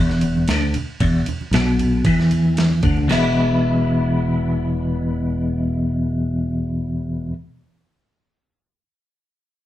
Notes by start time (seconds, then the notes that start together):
Already playing: E1 E2
0.10 snare
0.21 ride, high conga, low conga
0.37 high conga
0.48 D2 D3, snare, ride
0.62 high conga
0.74 muted fingered electric bass stroke, muted clean electric guitar stroke, ride, low conga
1.00 E1 E2, kick, ride
1.26 muted fingered electric bass stroke, muted clean electric guitar stroke, ride, high conga, low conga
1.41 high conga
1.51 B1 B2, snare, ride
1.79 ride, low conga
2.05 E2 E3, kick, ride
2.20 snare
2.31 ride, low conga
2.45 high conga
2.57 snare, ride, high conga
2.71 high conga
2.83 D2 D3, kick, ride, low conga
2.97 low conga
3.08 E1 E2 B2 E3 G#3 B3, snare, crash, high conga
3.12 E4